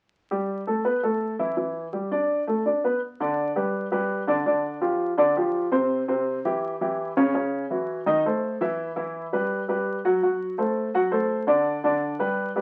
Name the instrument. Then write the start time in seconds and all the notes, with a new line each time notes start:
grand piano
0.31 G3 G4
0.67 A3 A4
0.85 B3 B4
1.03 A3 A4
1.39 E3 E4
1.57 E3 E4
1.93 G3 G4
2.11 D4 D5
2.47 A3 A4
2.66 D4 D5
2.84 B3 B4
3.20 D3 D4 D5
3.56 G3 G4 B4
3.92 G3 G4 B4
4.27 D3 D4 D5
4.46 D3 D4 D5
4.81 F3 F4 G4
5.17 D3 D4 D5
5.36 F3 F4 G4
5.72 C3 C4 C5
6.08 C3 C4 C5
6.45 E3 E4 G4
6.81 E3 E4 G4
7.17 C#3 C#4 C#5
7.34 C#3 C#4 C#5
7.70 E3 E4 F#4
8.06 D#3 D#4 D#5
8.25 A3 A4 C5
8.61 E3 E4 E5
8.96 E3 E4 E5
9.33 G3 G4 B4
9.68 G3 G4 B4
10.05 F#3 F#4 F#5
10.22 F#3 F#4 F#5
10.58 A3 A4 C5
10.94 F#3 F#4 F#5
11.11 A3 A4 C5
11.47 D3 D4 D5
11.84 D3 D4 D5
12.19 G3 G4 B4
12.56 G3 G4 B4